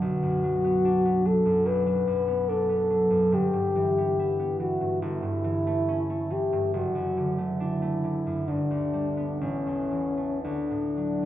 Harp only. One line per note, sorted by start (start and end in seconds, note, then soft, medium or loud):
0.00 1.64 B1 soft
0.00 0.43 F#3 soft
0.00 0.84 D4 soft
0.23 1.44 F#2 soft
0.44 1.24 F#3 soft
0.64 1.04 B3 soft
0.85 2.48 D4 soft
1.05 2.27 B3 soft
1.25 1.85 F#3 soft
1.45 2.06 F#2 soft
1.66 3.36 B1 soft
1.86 2.89 F#3 soft
2.07 3.09 F#2 soft
2.28 2.68 B3 soft
2.49 3.37 D4 soft
2.69 3.97 B3 soft
2.90 3.37 F#3 soft
3.10 3.36 F#2 soft
3.32 5.01 G1 soft
3.53 4.80 G2 soft
3.76 4.58 E3 soft
3.98 4.38 B3 soft
4.19 6.78 E4 soft
4.40 5.06 B3 soft
4.60 5.06 E3 soft
4.81 5.06 G2 soft
5.02 6.78 G1 soft
5.23 6.52 G2 soft
5.44 6.29 E3 soft
5.67 6.09 A3 soft
5.88 6.78 C#4 soft
6.10 7.37 A3 soft
6.30 6.77 E3 soft
6.53 6.78 G2 soft
6.74 8.52 F#1 soft
6.95 8.25 F#2 soft
7.17 8.03 D3 soft
7.38 7.81 A3 soft
7.60 9.45 D4 soft
7.82 8.52 A3 soft
8.04 8.52 D3 soft
8.27 8.52 F#2 soft
8.48 9.45 G1 soft
8.71 9.45 D2 soft
8.94 9.45 G3 soft
9.17 9.45 B3 soft
9.41 10.49 A1 soft
9.67 10.49 E2 soft
9.92 10.49 E3 soft
10.17 11.21 A3 soft
10.44 11.25 D2 soft
10.71 11.25 A2 soft
10.97 11.25 F#3 soft